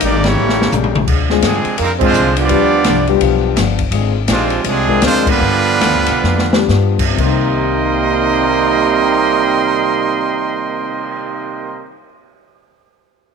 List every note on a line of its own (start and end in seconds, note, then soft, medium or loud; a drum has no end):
0.00 0.35 G#1 medium
0.00 0.25 C3 medium
0.00 0.35 D#3 medium
0.00 0.26 D#3 medium
0.00 0.23 G3 medium
0.00 0.36 A#3 medium
0.00 0.24 A#3 medium
0.00 0.26 A#3 medium
0.00 0.35 C4 medium
0.00 0.24 D4 medium
0.00 0.26 D4 medium
0.00 0.36 D#4 medium
0.00 0.24 D#4 medium
0.00 0.24 G4 medium
0.00 0.25 D5 medium
0.00 hi-hat pedal medium
0.00 ride medium
0.24 0.73 E3 medium
0.24 0.73 G3 medium
0.24 0.73 A#3 medium
0.24 0.73 C#4 medium
0.24 0.73 E4 medium
0.24 0.73 G4 medium
0.24 0.73 C#5 loud
0.24 snare medium
0.24 ride medium
0.36 0.71 A1 medium
0.36 0.61 A2 medium
0.36 1.08 C#3 medium
0.36 0.61 G3 medium
0.36 0.62 A#3 medium
0.36 1.09 A#3 medium
0.36 1.08 G4 medium
0.36 1.09 A4 medium
0.40 0.62 C#4 medium
0.49 snare medium
0.62 snare medium
0.72 1.07 A#1 loud
0.72 0.97 A2 medium
0.72 0.97 G3 medium
0.72 0.97 A#3 medium
0.72 0.97 C#4 medium
0.72 hi-hat pedal medium
0.72 mid tom medium
0.84 mid tom medium
0.95 mid tom loud
1.07 1.42 D2 medium
1.07 1.32 D3 medium
1.07 1.32 G#3 medium
1.07 1.33 C4 medium
1.07 1.33 F4 medium
1.07 kick medium
1.07 crash medium
1.30 1.43 G#3 medium
1.30 1.43 C4 medium
1.30 1.43 D4 medium
1.30 1.43 F4 medium
1.30 1.43 G#4 medium
1.30 snare medium
1.42 1.64 G2 loud
1.42 1.77 C3 medium
1.42 1.67 D3 medium
1.42 1.77 F3 medium
1.42 1.77 G#3 medium
1.42 1.67 G#3 medium
1.42 1.67 C4 medium
1.42 1.78 C4 medium
1.42 1.78 D4 medium
1.42 1.68 F4 medium
1.42 1.78 G#4 medium
1.42 snare medium
1.42 hi-hat pedal medium
1.42 ride medium
1.65 muted upright bass stroke soft
1.65 ride soft
1.78 2.13 F2 medium
1.78 2.03 D3 soft
1.78 1.91 G3 medium
1.78 2.03 G#3 soft
1.78 1.89 A#3 medium
1.78 2.04 C4 medium
1.78 1.91 A#4 medium
1.78 ride medium
1.82 1.92 C4 medium
1.82 1.91 D#4 medium
1.82 2.04 F4 medium
1.99 2.33 F3 loud
1.99 2.33 G#3 loud
1.99 2.13 G#3 medium
1.99 2.33 C4 medium
1.99 2.13 C4 medium
1.99 2.14 D4 medium
1.99 2.14 F4 medium
1.99 2.14 G#4 medium
1.99 kick loud
1.99 crash medium
2.04 2.36 G#3 medium
2.04 2.36 D4 medium
2.04 2.36 F4 loud
2.04 2.36 C5 loud
2.14 2.49 C2 loud
2.14 2.38 D3 medium
2.14 2.39 G#3 medium
2.14 2.39 C4 medium
2.14 2.39 F4 medium
2.14 hi-hat pedal medium
2.36 3.08 F3 medium
2.36 3.08 B3 medium
2.36 3.08 D4 medium
2.36 ride medium
2.41 3.10 B3 medium
2.41 3.10 F4 medium
2.41 3.10 G4 medium
2.41 3.10 D5 loud
2.49 2.84 D2 medium
2.49 2.74 G2 soft
2.49 2.75 F3 medium
2.49 2.70 G3 medium
2.49 2.70 B3 medium
2.49 2.75 B3 medium
2.49 2.70 D4 medium
2.49 2.70 F4 medium
2.49 2.70 G4 medium
2.49 ride medium
2.53 2.75 D4 medium
2.84 3.20 C2 medium
2.84 3.10 G2 medium
2.84 3.10 F3 medium
2.84 3.10 B3 medium
2.84 snare medium
2.84 hi-hat pedal medium
2.84 ride medium
2.89 3.11 D4 medium
3.07 3.55 G3 medium
3.07 3.55 B3 medium
3.07 3.54 D4 medium
3.07 3.55 F4 medium
3.07 3.55 G4 medium
3.07 ride soft
3.21 3.55 B1 medium
3.21 3.45 G2 medium
3.21 3.45 F3 medium
3.21 3.46 B3 medium
3.21 3.46 D4 medium
3.21 ride medium
3.56 3.91 G1 loud
3.56 3.80 G2 medium
3.56 3.81 F3 medium
3.56 3.81 B3 medium
3.56 3.81 D4 medium
3.56 snare medium
3.56 hi-hat pedal medium
3.56 ride medium
3.79 kick medium
3.79 ride medium
3.91 4.26 G#1 medium
3.91 4.16 D3 medium
3.91 4.13 G#3 soft
3.91 4.17 G#3 medium
3.91 4.12 C4 medium
3.91 4.17 C4 medium
3.91 4.13 D4 medium
3.91 4.13 F4 soft
3.91 4.17 F4 medium
3.91 4.13 G#4 medium
3.91 ride medium
4.28 4.63 A#1 loud
4.28 4.62 G#2 medium
4.28 4.62 C3 medium
4.28 4.52 D3 medium
4.28 4.62 F3 medium
4.28 4.52 G#3 medium
4.28 4.64 G#3 medium
4.28 4.53 C4 medium
4.28 4.64 D4 medium
4.28 4.53 F4 medium
4.28 snare medium
4.28 hi-hat pedal medium
4.28 ride medium
4.32 4.64 C4 medium
4.32 4.64 F4 medium
4.50 ride soft
4.64 5.00 C2 medium
4.64 5.02 C3 medium
4.64 4.89 D3 medium
4.64 5.02 F3 medium
4.64 4.89 G#3 medium
4.64 5.02 G#3 medium
4.64 4.90 C4 medium
4.64 4.90 F4 medium
4.64 ride medium
4.68 5.04 C4 medium
4.68 5.04 D4 medium
4.68 5.04 G#4 loud
4.88 5.38 G#3 medium
4.88 5.38 C4 medium
4.88 5.38 D4 medium
4.88 5.38 F4 medium
4.88 5.38 A#4 medium
4.88 kick medium
5.02 5.39 D2 loud
5.02 5.27 D3 medium
5.02 5.25 F3 medium
5.02 5.28 G#3 medium
5.02 5.25 G#3 medium
5.02 5.26 G#3 medium
5.02 5.25 C4 loud
5.02 5.28 C4 medium
5.02 5.26 D4 medium
5.02 5.28 F4 medium
5.02 5.26 F4 medium
5.02 5.26 C5 loud
5.02 snare medium
5.02 hi-hat pedal medium
5.02 ride medium
5.26 6.70 D3 medium
5.26 6.70 F3 medium
5.26 6.71 G3 medium
5.26 6.70 B3 medium
5.26 6.71 D4 medium
5.26 6.71 F4 loud
5.26 6.71 B4 loud
5.26 kick loud
5.26 crash loud
5.41 5.80 G2 medium
5.41 5.68 G2 soft
5.41 5.68 F3 medium
5.41 5.69 B3 medium
5.41 5.69 D4 medium
5.81 5.95 D#2 loud
5.81 6.09 G2 medium
5.81 6.10 F3 medium
5.81 6.10 B3 medium
5.81 6.10 D4 medium
5.81 snare medium
5.81 hi-hat pedal medium
5.81 ride medium
5.95 6.08 D2 medium
6.06 6.22 B1 medium
6.06 ride medium
6.23 6.67 F2 medium
6.23 6.54 G2 medium
6.23 6.54 F3 medium
6.23 6.55 B3 medium
6.23 snare medium
6.27 6.55 D4 medium
6.38 snare medium
6.53 7.15 G3 medium
6.53 7.15 B3 medium
6.53 7.15 D4 medium
6.53 7.15 F4 medium
6.53 7.15 G4 medium
6.53 snare loud
6.69 7.16 G2 medium
6.69 7.01 G2 medium
6.69 7.01 F3 medium
6.69 7.01 B3 medium
6.69 7.01 D4 medium
6.69 snare medium
6.69 hi-hat pedal medium
6.99 kick medium
6.99 crash medium
7.06 11.81 C3 medium
7.12 11.89 C3 medium
7.12 11.87 C4 medium
7.17 11.88 C2 medium
7.17 11.88 C3 loud
7.17 11.94 D#3 medium
7.17 11.89 G3 loud
7.17 11.89 A#3 loud
7.17 11.93 A#3 medium
7.17 11.88 D#4 loud
7.17 11.92 A#4 medium
7.17 11.91 D#5 medium
7.17 11.91 G5 medium
7.17 11.91 C6 medium
7.17 kick medium
7.17 crash medium
7.24 11.99 A#3 medium
7.24 12.00 D#4 medium
7.31 12.06 A#4 medium
7.50 cymbal swell soft